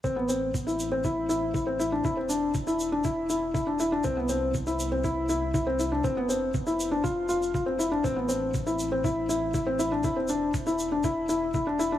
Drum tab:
SH |x-x-xxx-x-x-x-x-|x-x-xxx-x-x-x-x-|x-x-xxx-x-x-x-x-|x-x-xxx-x-xxx-x-|
BD |o---o---o---o---|o---o---o---o---|o---o---o---o---|o---o---o---o---|

SH |x-x-xxx-x-x-x-x-|x-x-xxx-x-x-x-x-|
BD |o---o---o---o---|o---o---o---o---|